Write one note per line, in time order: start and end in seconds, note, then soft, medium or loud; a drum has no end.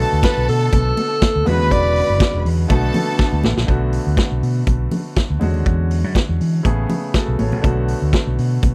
0.00 2.66 B2 medium
0.00 1.42 D3 medium
0.00 1.42 A3 medium
0.00 1.43 B3 medium
0.00 1.44 B3 medium
0.00 1.44 F#4 medium
0.00 1.19 A4 loud
0.00 1.44 A4 medium
0.00 1.19 A5 loud
0.13 0.21 D2 medium
0.23 0.47 B4 medium
0.23 kick loud
0.23 snare loud
0.23 closed hi-hat medium
0.23 high conga medium
0.37 0.46 B1 medium
0.48 0.67 B2 loud
0.48 1.49 A4 medium
0.48 open hi-hat medium
0.72 0.92 B1 loud
0.72 kick loud
0.72 closed hi-hat medium
0.72 muted conga medium
0.97 open hi-hat medium
0.97 muted conga medium
1.22 kick loud
1.22 snare loud
1.22 closed hi-hat medium
1.22 high conga medium
1.36 1.44 D2 medium
1.46 1.60 E2 loud
1.46 2.68 C#3 medium
1.46 2.67 D3 medium
1.46 2.67 G#3 medium
1.46 2.69 G#3 medium
1.46 2.69 B3 medium
1.46 2.69 F#4 medium
1.46 2.68 F#4 medium
1.46 2.43 B4 medium
1.46 1.73 B4 loud
1.46 2.43 B5 loud
1.46 open hi-hat medium
1.46 high conga medium
1.60 1.69 D#2 loud
1.71 2.00 E1 loud
1.71 2.45 D5 loud
1.71 kick medium
1.71 closed hi-hat soft
1.71 muted conga soft
1.96 open hi-hat medium
2.10 2.18 F#1 loud
2.20 kick loud
2.20 snare loud
2.20 closed hi-hat medium
2.20 high conga medium
2.34 2.43 E1 loud
2.45 2.64 E2 loud
2.45 open hi-hat medium
2.68 2.89 B1 loud
2.68 3.68 B2 medium
2.68 3.65 D3 medium
2.68 3.66 A3 medium
2.68 3.68 A3 medium
2.68 3.67 B3 medium
2.68 3.68 D4 medium
2.68 3.67 F#4 medium
2.68 3.42 A4 loud
2.68 3.42 A5 loud
2.68 kick loud
2.68 closed hi-hat medium
2.68 muted conga medium
2.94 open hi-hat medium
2.94 muted conga medium
2.94 low conga medium
3.19 kick loud
3.19 snare medium
3.19 high conga medium
3.33 3.41 D2 medium
3.44 3.54 A1 loud
3.44 snare medium
3.44 high conga loud
3.57 3.66 A#1 medium
3.57 snare medium
3.67 3.97 B1 medium
3.67 5.37 D3 medium
3.67 5.38 A3 medium
3.67 5.38 B3 medium
3.67 5.39 F#4 medium
3.67 kick medium
3.67 closed hi-hat soft
3.93 open hi-hat medium
4.07 4.15 D2 medium
4.17 kick loud
4.17 snare loud
4.17 closed hi-hat medium
4.17 high conga medium
4.32 4.40 B1 medium
4.43 4.62 B2 loud
4.43 open hi-hat medium
4.67 4.86 B1 medium
4.67 kick medium
4.67 closed hi-hat medium
4.67 muted conga medium
4.91 open hi-hat medium
4.91 muted conga soft
4.91 low conga medium
5.16 kick loud
5.16 snare loud
5.16 closed hi-hat medium
5.16 high conga medium
5.30 5.39 D2 medium
5.39 5.54 E2 medium
5.39 6.62 D3 medium
5.39 6.62 G#3 medium
5.39 6.63 C#4 medium
5.39 6.63 F#4 medium
5.39 open hi-hat medium
5.39 high conga medium
5.54 5.63 D#2 medium
5.54 high conga soft
5.66 6.04 E2 medium
5.66 kick loud
5.66 closed hi-hat soft
5.66 muted conga soft
5.91 open hi-hat medium
6.04 6.13 F#2 medium
6.15 kick loud
6.15 snare loud
6.15 closed hi-hat medium
6.15 high conga medium
6.29 6.38 E2 medium
6.41 6.59 E3 loud
6.41 open hi-hat medium
6.63 6.84 A1 loud
6.63 7.61 C#3 medium
6.63 7.61 A3 medium
6.63 7.62 B3 medium
6.63 7.14 G#4 medium
6.63 kick loud
6.63 closed hi-hat medium
6.63 muted conga medium
6.89 open hi-hat medium
6.89 muted conga soft
6.89 low conga medium
7.14 7.38 F#4 medium
7.14 7.38 A4 medium
7.14 kick loud
7.14 snare loud
7.14 closed hi-hat medium
7.14 high conga medium
7.28 7.37 B1 medium
7.39 7.53 A1 medium
7.39 7.86 A4 soft
7.39 7.86 C#5 medium
7.39 open hi-hat medium
7.39 high conga medium
7.52 7.61 A#1 medium
7.52 high conga medium
7.62 7.93 B1 medium
7.62 8.74 D3 medium
7.62 8.74 A3 medium
7.62 8.74 B3 medium
7.62 8.74 F#4 medium
7.62 kick loud
7.62 closed hi-hat soft
7.62 muted conga soft
7.88 open hi-hat medium
8.02 8.11 D2 medium
8.13 kick loud
8.13 snare loud
8.13 closed hi-hat medium
8.13 high conga medium
8.27 8.36 B1 medium
8.38 8.57 B2 loud
8.38 open hi-hat medium
8.62 8.74 B1 loud
8.62 kick loud
8.62 closed hi-hat medium
8.62 muted conga medium